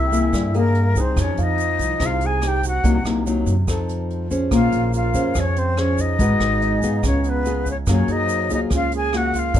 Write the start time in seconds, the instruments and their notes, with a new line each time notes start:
Already playing: upright bass C2, nylon-string guitar C3, alto flute E4, flute E5, grand piano E5
0.06 grand piano G5
0.12 nylon-string guitar A#3 E4 G#4, kick, closed hi-hat, shaker
0.22 grand piano G#5
0.33 upright bass G2, nylon-string guitar G2, kick, cross-stick, closed hi-hat, shaker
0.54 nylon-string guitar A#3 E4 G#4, alto flute A#3, closed hi-hat, shaker
0.58 flute A#4
0.75 closed hi-hat
0.95 upright bass C2, nylon-string guitar C4 D#4 G#4, alto flute C4, kick, closed hi-hat, shaker
1.01 flute C5
1.16 upright bass F2, nylon-string guitar F3, alto flute C#4, kick, cross-stick, closed hi-hat, shaker
1.21 flute C#5
1.37 upright bass F2, alto flute D#4, grand piano F5, closed hi-hat, shaker
1.43 flute D#5
1.58 closed hi-hat, shaker
1.79 upright bass C2, kick, closed hi-hat, shaker
2.00 upright bass C2, nylon-string guitar C3 C4 D#4 G#4, kick, cross-stick, closed hi-hat, shaker
2.04 alto flute F4, flute F5
2.21 closed hi-hat, shaker
2.25 alto flute G#4, flute G#5
2.42 nylon-string guitar C4 D#4 G#4, alto flute G4, cross-stick, closed hi-hat, shaker
2.48 flute G5
2.63 alto flute F#4, kick, closed hi-hat, shaker
2.68 flute F#5
2.84 upright bass C2, nylon-string guitar C3 F#3 A#3 D#4, kick, closed hi-hat, shaker
3.04 upright bass C2, nylon-string guitar F#3 A#3 D#4, cross-stick, closed hi-hat, shaker
3.26 nylon-string guitar F#3 A#3 D#4, closed hi-hat, shaker
3.46 upright bass F#2, kick, closed hi-hat, shaker
3.67 upright bass F2, nylon-string guitar F3 C4 D#4 A4, kick, cross-stick, closed hi-hat, shaker
3.89 closed hi-hat, shaker
4.10 closed hi-hat
4.30 nylon-string guitar C#4 G#4 C5, kick, closed hi-hat, shaker
4.51 upright bass A#1, nylon-string guitar A#3, alto flute F4, flute F5, kick, cross-stick, closed hi-hat, shaker
4.72 upright bass A#1, closed hi-hat, shaker
4.93 alto flute F4, flute F5, closed hi-hat, shaker
5.14 upright bass F2, nylon-string guitar C#4 G#4 C5, kick, closed hi-hat, shaker
5.35 upright bass F2, nylon-string guitar F3, alto flute C#4, kick, cross-stick, closed hi-hat, shaker
5.40 flute C#5
5.56 alto flute C4, flute C5, closed hi-hat, shaker
5.77 nylon-string guitar C#4 G#4 C5, alto flute C#4, flute C#5, cross-stick, closed hi-hat
5.98 alto flute D#4, flute D#5, kick, closed hi-hat, shaker
6.19 upright bass G#1, nylon-string guitar G#3 D#4 F#4 B4, kick, closed hi-hat, shaker
6.39 upright bass G#1, cross-stick, closed hi-hat, shaker
6.62 grand piano D#5, closed hi-hat
6.78 upright bass G#2, grand piano G#5
6.82 nylon-string guitar B3 F4 G#4, kick, closed hi-hat, shaker
6.93 grand piano A#5
7.03 upright bass C#2, nylon-string guitar C#3, alto flute C#4, flute C#5, kick, cross-stick, closed hi-hat, shaker
7.24 alto flute B3, closed hi-hat, shaker
7.29 flute B4
7.45 nylon-string guitar B3 F4 G#4, closed hi-hat, shaker
7.66 alto flute C#4, kick, closed hi-hat, shaker
7.71 flute C#5
7.87 upright bass F#2, nylon-string guitar F#3 A#3 F4 G#4, alto flute C#4, kick, cross-stick, closed hi-hat, shaker
7.92 flute C#5
8.08 alto flute D#4, grand piano G#4, closed hi-hat, shaker
8.12 flute D#5
8.24 grand piano C5
8.29 closed hi-hat, shaker
8.39 grand piano C#5
8.49 upright bass C#2, nylon-string guitar A#3 F4 G#4, alto flute D#4, kick, closed hi-hat, shaker
8.54 flute D#5
8.70 upright bass C#2, nylon-string guitar C#3, alto flute F4, kick, cross-stick, closed hi-hat, shaker
8.75 flute F5
8.92 alto flute G#4, closed hi-hat, shaker
8.97 flute G#5
9.13 nylon-string guitar A#3 F4 G#4, alto flute F#4, cross-stick, closed hi-hat
9.17 flute F#5
9.33 alto flute F4, kick, closed hi-hat, shaker
9.39 flute F5
9.54 upright bass G2, nylon-string guitar G2 F3 A#3, grand piano A4, kick, closed hi-hat, shaker